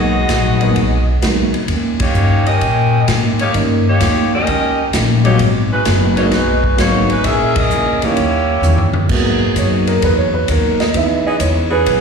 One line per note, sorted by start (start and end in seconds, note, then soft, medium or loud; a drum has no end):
0.00 0.28 B1 medium
0.00 0.16 G#2 soft
0.00 0.11 F#3 soft
0.00 0.17 F#3 soft
0.00 0.11 G#3 soft
0.00 0.12 A#3 soft
0.00 0.12 B3 soft
0.00 0.18 B3 soft
0.00 1.20 B3 medium
0.00 0.12 D#4 medium
0.00 0.18 D#4 soft
0.00 1.20 F#4 medium
0.00 1.21 G#4 medium
0.00 1.21 D#5 loud
0.29 0.75 A#1 medium
0.29 0.62 G#2 medium
0.29 0.62 F#3 medium
0.29 0.63 B3 medium
0.29 0.63 D#4 medium
0.29 kick soft
0.29 snare medium
0.29 hi-hat pedal soft
0.29 ride medium
0.60 0.74 F#3 medium
0.60 0.74 G#3 medium
0.60 0.74 A#3 medium
0.60 0.75 B3 medium
0.60 0.75 D#4 medium
0.60 ride soft
0.75 1.21 B1 medium
0.75 1.08 G#2 soft
0.75 1.09 F#3 soft
0.75 1.10 B3 medium
0.75 1.10 D#4 soft
0.75 kick soft
0.75 ride medium
1.21 1.67 C#2 medium
1.21 1.55 G#2 medium
1.21 1.50 F#3 soft
1.21 1.56 F#3 medium
1.21 1.50 G#3 soft
1.21 1.50 A#3 soft
1.21 1.51 B3 soft
1.21 1.56 B3 medium
1.21 1.51 D#4 soft
1.21 1.57 D#4 medium
1.21 kick soft
1.21 snare medium
1.21 hi-hat pedal soft
1.21 ride medium
1.54 ride soft
1.68 2.13 D#2 medium
1.68 2.02 D#3 soft
1.68 2.02 A#3 soft
1.68 2.03 C#4 medium
1.68 kick soft
1.68 ride medium
1.72 2.04 G4 medium
2.00 2.44 A#3 medium
2.00 2.44 D#4 medium
2.00 2.43 G4 medium
2.00 2.44 C#5 medium
2.00 kick medium
2.00 ride medium
2.14 2.59 G2 medium
2.14 2.48 D#3 medium
2.14 2.49 A#3 medium
2.14 2.49 C#4 medium
2.14 2.50 G4 medium
2.14 hi-hat pedal medium
2.46 3.08 C#4 medium
2.46 3.08 G4 medium
2.46 3.08 A#4 medium
2.46 3.08 D#5 loud
2.46 ride soft
2.61 3.06 A#2 medium
2.61 2.95 D#3 soft
2.61 2.95 A#3 soft
2.61 2.96 C#4 soft
2.61 kick soft
2.61 ride medium
2.66 2.97 G4 soft
3.07 3.52 G#2 medium
3.07 3.41 D#3 medium
3.07 3.42 A#3 medium
3.07 3.42 C#4 medium
3.07 3.42 G4 medium
3.07 kick soft
3.07 snare medium
3.07 hi-hat pedal medium
3.07 ride medium
3.39 3.54 A#3 medium
3.39 3.54 D#4 medium
3.39 3.54 G4 medium
3.39 3.54 C#5 medium
3.39 ride soft
3.54 3.99 G2 medium
3.54 3.82 D#3 medium
3.54 3.88 D#3 soft
3.54 3.83 G3 medium
3.54 3.83 A#3 medium
3.54 3.88 A#3 soft
3.54 3.83 C#4 soft
3.54 3.89 C#4 soft
3.54 3.83 D#4 medium
3.54 kick soft
3.54 ride medium
3.58 3.89 G4 soft
3.88 4.30 A#3 medium
3.88 4.30 D#4 medium
3.88 4.30 G4 medium
3.88 4.30 C#5 medium
4.00 4.45 D#2 medium
4.00 4.34 D#3 medium
4.00 4.34 A#3 medium
4.00 4.35 C#4 medium
4.00 4.35 G4 medium
4.00 kick soft
4.00 snare medium
4.00 hi-hat pedal medium
4.00 ride medium
4.33 4.90 C#4 medium
4.33 4.90 G4 medium
4.33 4.90 A#4 medium
4.33 4.90 D#5 loud
4.47 4.92 C#2 medium
4.47 4.80 D#3 soft
4.47 4.80 A#3 soft
4.47 4.81 C#4 soft
4.47 4.81 G4 soft
4.47 kick soft
4.47 ride medium
4.93 5.38 A#1 medium
4.93 5.26 D#3 medium
4.93 5.26 A#3 medium
4.93 5.27 C#4 medium
4.93 5.27 G4 medium
4.93 kick soft
4.93 snare medium
4.93 hi-hat pedal medium
4.93 ride medium
5.24 5.38 F#3 medium
5.24 5.38 G#3 medium
5.24 5.38 A#3 medium
5.24 5.39 A#3 medium
5.24 5.38 B3 medium
5.24 5.38 D#4 medium
5.24 5.39 F#4 medium
5.24 5.38 G4 medium
5.24 5.39 C#5 medium
5.24 ride soft
5.39 5.84 G#1 medium
5.39 5.73 G#2 soft
5.39 5.73 F#3 soft
5.39 5.74 B3 medium
5.39 kick soft
5.39 ride medium
5.44 5.75 D#4 medium
5.71 6.14 G#3 medium
5.71 6.14 D#4 medium
5.71 6.14 F#4 medium
5.71 6.15 B4 medium
5.85 6.30 F#1 medium
5.85 6.18 G#2 medium
5.85 6.19 F#3 medium
5.85 6.19 B3 medium
5.85 6.19 D#4 medium
5.85 kick soft
5.85 snare medium
5.85 hi-hat pedal medium
5.85 ride medium
6.17 6.30 F#3 medium
6.17 6.31 G#3 medium
6.17 6.31 A#3 medium
6.17 6.24 A#3 medium
6.17 6.31 B3 medium
6.17 6.25 D#4 medium
6.17 6.31 D#4 medium
6.17 6.24 F#4 medium
6.17 6.24 C#5 medium
6.17 ride soft
6.31 6.76 B1 medium
6.31 6.64 G#2 soft
6.31 6.65 F#3 soft
6.31 6.76 G#3 medium
6.31 6.66 B3 soft
6.31 6.66 D#4 soft
6.31 6.76 D#4 medium
6.31 6.76 F#4 medium
6.31 6.76 B4 medium
6.31 kick soft
6.31 snare soft
6.31 ride medium
6.64 kick medium
6.77 7.23 G#1 medium
6.77 7.11 G#2 medium
6.77 7.06 F#3 medium
6.77 7.12 F#3 medium
6.77 7.06 G#3 soft
6.77 7.06 A#3 soft
6.77 7.08 A#3 medium
6.77 7.07 B3 medium
6.77 7.12 B3 medium
6.77 7.06 D#4 medium
6.77 7.08 D#4 medium
6.77 7.12 D#4 medium
6.77 7.08 F#4 medium
6.77 7.08 C#5 medium
6.77 kick soft
6.77 snare medium
6.77 hi-hat pedal medium
6.77 ride medium
7.09 7.24 G#3 medium
7.09 7.24 D#4 medium
7.09 7.24 F#4 medium
7.09 7.25 B4 medium
7.09 ride soft
7.24 7.69 A#1 medium
7.24 7.57 A#2 soft
7.24 7.58 G#3 soft
7.24 7.54 C#4 medium
7.24 7.58 C#4 soft
7.24 7.59 E4 soft
7.24 7.55 G#4 medium
7.24 7.54 A#4 medium
7.24 7.56 E5 loud
7.24 kick soft
7.24 ride medium
7.55 8.02 C#4 medium
7.55 8.02 G#4 medium
7.55 8.02 A#4 medium
7.55 8.02 D#5 medium
7.55 kick medium
7.55 ride medium
7.70 7.99 C#2 medium
7.70 8.04 A#2 medium
7.70 8.04 G#3 medium
7.70 8.05 C#4 medium
7.70 8.05 E4 medium
7.70 hi-hat pedal medium
8.01 8.15 E3 medium
8.01 8.15 G3 medium
8.01 8.91 A#3 medium
8.01 8.16 A#3 medium
8.01 8.16 C#4 medium
8.01 8.16 D#4 medium
8.01 8.91 E4 medium
8.01 8.91 G4 medium
8.01 8.91 C#5 medium
8.01 muted upright bass stroke soft
8.01 ride soft
8.16 8.60 D#2 medium
8.16 8.49 D#3 soft
8.16 8.50 G3 soft
8.16 8.51 C#4 soft
8.16 kick soft
8.16 ride medium
8.20 8.51 E4 soft
8.61 8.91 E2 medium
8.61 8.96 D#3 medium
8.61 8.97 G3 medium
8.61 hi-hat pedal soft
8.61 high tom soft
8.65 8.97 C#4 medium
8.65 8.97 E4 medium
8.78 floor tom medium
8.93 muted upright bass stroke soft
8.93 floor tom medium
9.09 9.54 G#2 medium
9.09 9.42 G#2 soft
9.09 10.39 F#3 medium
9.09 9.43 F#3 medium
9.09 10.90 A#3 soft
9.09 10.90 B3 soft
9.09 9.43 B3 medium
9.09 10.39 D#4 medium
9.09 9.44 D#4 medium
9.09 10.90 F#4 medium
9.09 10.40 G#4 medium
9.09 kick medium
9.09 crash medium
9.56 10.00 F#2 medium
9.56 9.88 G#2 medium
9.56 9.89 F#3 medium
9.56 9.89 B3 medium
9.56 9.90 D#4 medium
9.56 9.87 C#5 medium
9.56 kick soft
9.56 hi-hat pedal medium
9.56 ride medium
9.87 10.02 A#4 medium
9.87 ride soft
10.02 10.47 E2 medium
10.02 10.34 G#2 soft
10.02 10.35 F#3 soft
10.02 10.36 B3 soft
10.02 10.36 D#4 soft
10.02 10.18 B4 medium
10.02 kick soft
10.02 ride medium
10.18 10.33 C#5 medium
10.34 10.48 B4 medium
10.47 10.93 D#2 medium
10.47 10.80 G#2 medium
10.47 10.81 F#3 medium
10.47 10.82 B3 medium
10.47 10.82 D#4 medium
10.47 10.79 A#4 medium
10.47 kick soft
10.47 hi-hat pedal soft
10.47 ride medium
10.80 10.94 D#5 medium
10.80 snare soft
10.80 ride soft
10.94 11.39 C#2 medium
10.94 11.27 C#3 soft
10.94 11.68 E3 soft
10.94 11.28 G#3 soft
10.94 11.68 B3 soft
10.94 11.28 B3 soft
10.94 11.68 D#4 medium
10.94 11.29 E4 soft
10.94 11.26 E5 medium
10.94 kick soft
10.94 ride medium
11.25 11.35 E3 medium
11.25 11.35 B3 medium
11.25 11.35 C#4 medium
11.25 11.35 G#4 loud
11.25 11.40 D#5 medium
11.40 11.85 E2 medium
11.40 11.73 C#3 medium
11.40 11.73 G#3 medium
11.40 11.74 B3 medium
11.40 11.74 E4 medium
11.40 11.71 C#5 medium
11.40 kick soft
11.40 hi-hat pedal medium
11.40 ride medium
11.70 12.01 E3 medium
11.70 12.01 B3 medium
11.70 12.01 C#4 medium
11.70 12.01 G#4 loud
11.70 12.01 B4 medium
11.85 12.01 B1 medium
11.85 12.01 C#3 soft
11.85 12.01 G#3 soft
11.85 12.01 B3 soft
11.85 12.01 E4 soft
11.85 kick soft
11.85 ride medium